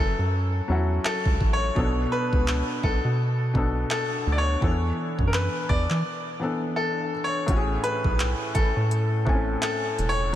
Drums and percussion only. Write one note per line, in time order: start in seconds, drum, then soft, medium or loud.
1.05 clap loud
1.26 kick medium
1.41 kick medium
1.76 kick loud
2.33 kick medium
2.48 clap loud
2.83 kick medium
3.55 kick medium
3.91 clap medium
4.62 kick loud
5.19 kick medium
5.34 clap loud
5.69 kick loud
5.90 clap medium
7.48 kick loud
7.48 closed hi-hat medium
7.84 closed hi-hat medium
8.04 kick medium
8.20 clap loud
8.20 closed hi-hat medium
8.55 kick medium
8.55 closed hi-hat medium
8.91 closed hi-hat medium
9.27 kick loud
9.62 clap loud
9.62 closed hi-hat medium
9.99 closed hi-hat medium